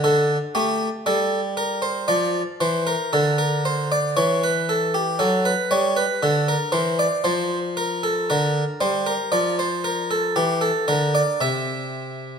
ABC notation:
X:1
M:4/4
L:1/16
Q:1/4=58
K:Dphr
V:1 name="Harpsichord"
A2 G2 A2 B c d2 c B A B c d | ^c =B A G A B c B A _B =c d c2 B A | B2 c B d c B A G A B d =e4 |]
V:2 name="Harpsichord" clef=bass
D,2 A,2 G,4 F,2 =E,2 D,4 | =E,4 ^F,2 G,2 D,2 E,2 =F,4 | D,2 G,2 F,4 =E,2 D,2 C,4 |]